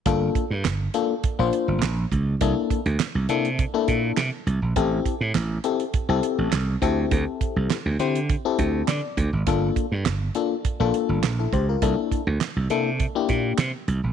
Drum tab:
HH |x-x-x-x-x-x-x-x-|x-xxx-xxx-x-x-x-|x-x-x-xxx-x-x-x-|x-x-x-xxx-x-x-x-|
CP |----x-------x---|----x-------x---|----x-------x---|----x-------x---|
SD |----o-------o---|----o-------o---|----o-------o---|----o-------o---|
BD |o-o-----o-----o-|o-o-----o-o-----|o-o-----o-----o-|o-o-----o-o---o-|

HH |x-x-x-x-x-x-x-x-|x-x-x-x-x-x-x-x-|
CP |----x-------x---|----x-------x---|
SD |----o-------o---|----o-------o---|
BD |o-o-----o-----o-|o-o-----o-o-----|